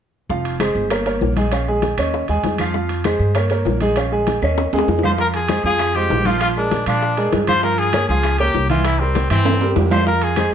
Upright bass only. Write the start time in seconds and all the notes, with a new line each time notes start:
0.29 F1
0.75 G1
1.21 A#1
1.98 D#2
2.29 D#2
2.43 F2
3.20 G2
3.66 A#1
4.42 D#2
4.73 D#2
4.88 F2
5.64 F2
6.10 A#1
6.86 A#2
7.33 G2
8.09 C#2
8.55 C2
9.30 G2
9.76 F2